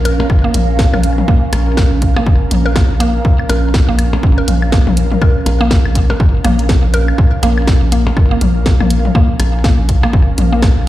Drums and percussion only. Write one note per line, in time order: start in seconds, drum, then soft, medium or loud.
0.05 closed hi-hat medium
0.20 percussion blips medium
0.30 kick loud
0.30 claves medium
0.54 closed hi-hat medium
0.54 high tom medium
0.79 kick loud
0.79 snare loud
0.94 high tom medium
0.94 claves medium
1.03 closed hi-hat medium
1.18 high tom soft
1.28 kick loud
1.53 closed hi-hat medium
1.53 percussion blips medium
1.53 claves medium
1.77 kick loud
1.77 snare medium
2.02 kick medium
2.02 closed hi-hat medium
2.17 percussion blips medium
2.17 claves medium
2.26 kick loud
2.51 closed hi-hat medium
2.51 high tom medium
2.76 kick loud
2.76 snare loud
2.76 claves medium
3.00 closed hi-hat medium
3.25 kick loud
3.39 claves medium
3.49 closed hi-hat medium
3.49 percussion blips medium
3.74 kick loud
3.74 snare medium
3.99 closed hi-hat medium
3.99 claves medium
4.13 percussion blips medium
4.23 kick loud
4.48 closed hi-hat loud
4.48 high tom medium
4.62 claves medium
4.72 kick loud
4.72 snare medium
4.87 high tom medium
4.97 closed hi-hat medium
5.12 high tom medium
5.22 kick loud
5.22 claves medium
5.46 closed hi-hat medium
5.46 percussion blips medium
5.71 kick loud
5.71 snare medium
5.86 claves medium
5.95 kick medium
5.95 closed hi-hat medium
6.10 percussion blips medium
6.20 kick loud
6.45 closed hi-hat medium
6.45 high tom medium
6.45 claves medium
6.59 closed hi-hat soft
6.69 kick loud
6.69 snare medium
6.94 closed hi-hat medium
7.08 claves medium
7.18 kick loud
7.43 closed hi-hat medium
7.43 percussion blips medium
7.58 claves medium
7.67 kick loud
7.67 snare medium
7.92 closed hi-hat medium
8.07 percussion blips medium
8.17 kick loud
8.17 claves medium
8.41 closed hi-hat medium
8.41 high tom medium
8.66 kick loud
8.66 snare medium
8.80 high tom medium
8.80 claves medium
8.90 closed hi-hat medium
9.05 high tom soft
9.15 kick loud
9.40 closed hi-hat medium
9.40 percussion blips medium
9.40 claves medium
9.64 kick loud
9.64 snare medium
9.89 kick medium
9.89 closed hi-hat medium
10.03 percussion blips medium
10.03 claves medium
10.13 kick loud
10.38 closed hi-hat medium
10.38 high tom medium
10.63 kick loud
10.63 snare medium
10.63 claves medium